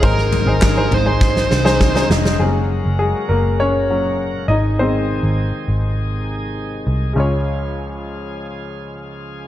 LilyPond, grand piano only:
<<
  \new Staff \with { instrumentName = "Grand piano" } { \time 4/4 \key des \major \tempo 4 = 101 <ees' aes' c''>8 r16 <ees' aes' c''>16 r16 <ees' aes' c''>16 r16 <ees' aes' c''>8. r16 <ees' aes' c''>16 r16 <ees' aes' c''>8 r16 | <aes aes'>4 <aes aes'>8 <bes bes'>8 <des' des''>4. <ees' ees''>8 | c''2. r4 | <aes des' f' des''>1 | }
  \new Staff \with { instrumentName = "Grand piano" } { \clef bass \time 4/4 \key des \major aes,4. r2 r8 | <ges bes des'>8 r2 <ges bes des'>8 r4 | <ees aes c'>1 | des,1 | }
>>